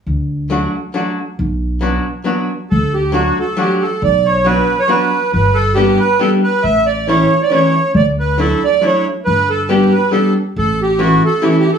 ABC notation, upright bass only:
X:1
M:3/4
L:1/8
Q:"Swing" 1/4=138
K:D
V:1 name="Upright bass" clef=bass
D,,4 z2 | B,,,4 z2 | D,,4 z2 | B,,,4 z2 |
G,,,4 z2 | A,,,4 z2 | D,,4 z2 | G,,,4 z2 |
A,,,4 z2 |]